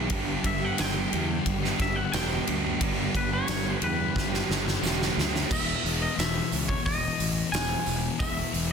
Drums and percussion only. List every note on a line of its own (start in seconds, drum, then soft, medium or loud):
0.10 kick loud
0.10 ride medium
0.44 kick medium
0.44 ride medium
0.78 snare loud
0.78 ride medium
0.78 tambourine medium
1.13 ride medium
1.46 kick medium
1.46 ride medium
1.64 snare soft
1.79 kick medium
1.79 snare soft
1.79 ride medium
2.13 snare loud
2.13 ride medium
2.13 tambourine medium
2.47 ride medium
2.81 kick loud
2.81 ride medium
3.15 kick medium
3.15 ride medium
3.48 snare medium
3.48 ride loud
3.48 tambourine medium
3.82 ride medium
4.16 kick medium
4.16 snare medium
4.34 snare medium
4.51 snare medium
4.68 snare medium
4.83 snare medium
4.83 tambourine medium
5.02 snare medium
5.19 snare loud
5.36 snare medium
5.51 kick loud
5.51 crash loud
5.51 tambourine medium
5.86 open hi-hat medium
6.19 snare loud
6.19 open hi-hat medium
6.19 tambourine loud
6.52 open hi-hat medium
6.52 tambourine medium
6.69 kick medium
6.86 kick medium
6.86 open hi-hat medium
6.86 tambourine soft
7.20 open hi-hat medium
7.20 tambourine medium
7.54 snare loud
7.54 open hi-hat medium
7.54 tambourine medium
7.86 open hi-hat medium
7.86 tambourine medium
8.20 kick loud
8.20 open hi-hat medium
8.20 tambourine medium
8.54 open hi-hat medium